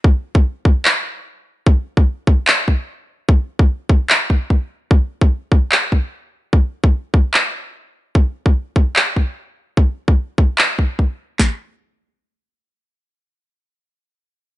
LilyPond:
\new DrumStaff \with { instrumentName = "Drums" } \drummode { \time 4/4 \tempo 4 = 148 bd8. bd16 r8 bd8 hc4 r4 | bd8. bd16 r8 bd8 hc8 bd8 r4 | bd8. bd16 r8 bd8 hc8 bd8 bd4 | bd8. bd16 r8 bd8 hc8 bd8 r4 |
bd8. bd16 r8 bd8 hc4 r4 | bd8. bd16 r8 bd8 hc8 bd8 r4 | bd8. bd16 r8 bd8 hc8 bd8 bd4 | <hc bd sn>4 r4 r4 r4 |
r4 r4 r4 r4 | }